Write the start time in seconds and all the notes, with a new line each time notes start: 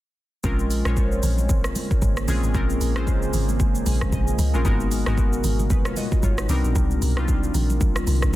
0.44 A#1 C#3 G#3 A#3 C4 C#4 F4 G#4 A#4, kick, low conga, shaker
0.59 shaker
0.71 open hi-hat, shaker
0.85 A#1 G#3 C#4 F4 C5 C#5, cross-stick, shaker
0.97 kick, shaker
1.12 shaker
1.23 A#1, open hi-hat, low conga, shaker
1.38 high conga, shaker
1.49 kick, low conga, shaker
1.64 cross-stick, shaker
1.75 open hi-hat, high conga, shaker
1.91 kick, shaker
2.02 G#1, kick, high conga, shaker
2.17 cross-stick, shaker
2.28 A#1 G#3 C4 C#4 F4 G#4, open hi-hat, high conga, low conga, shaker
2.44 G#1, shaker
2.54 A#1 G#3 C4 C#4 F4 A#4, kick, low conga, shaker
2.70 shaker
2.81 A#1, open hi-hat, shaker
2.96 G#3 C4 C#4 F4 C5, cross-stick, shaker
3.07 kick, shaker
3.22 shaker
3.33 G#1, open hi-hat, low conga, shaker
3.49 high conga, shaker
3.60 kick, low conga, shaker
3.75 shaker
3.86 A#1 G#5, open hi-hat, high conga, shaker
4.01 kick, cross-stick, shaker
4.12 A#1 D#5, kick, high conga, shaker
4.28 shaker
4.39 C#2, open hi-hat, high conga, low conga, shaker
4.54 A#1 G#3 C4 C#4 F4 A#4, shaker
4.65 G#1 B2 G#3 B3 D#4 F#4 A#4, kick, low conga, shaker
4.80 shaker
4.91 open hi-hat, shaker
5.06 G#1 G#3 B3 D#4 F#4 A#4, cross-stick, shaker
5.18 kick, shaker
5.33 shaker
5.44 G#1, open hi-hat, low conga, shaker
5.59 high conga, shaker
5.70 D#4 B4, kick, low conga, shaker
5.85 F4 C#5, cross-stick, shaker
5.96 F#4 D#5, open hi-hat, high conga, shaker
6.12 kick, shaker
6.23 G#1 F4 C#5, kick, high conga, shaker
6.38 D#4 B4, cross-stick, shaker
6.49 C2 C3 D#3 G3 A#3 C4 D4 D#4 A#4, open hi-hat, high conga, low conga, shaker
6.64 A#1, shaker
6.75 C2, kick, low conga, shaker
6.91 shaker
7.02 C2, open hi-hat, shaker
7.17 G3 C4 D4 D#4 F4, cross-stick, shaker
7.28 kick, shaker
7.43 shaker
7.54 A#1, open hi-hat, low conga, shaker
7.70 high conga, shaker
7.81 kick, low conga, shaker
7.96 cross-stick, shaker
8.07 C2, open hi-hat, high conga, shaker
8.22 kick, cross-stick, shaker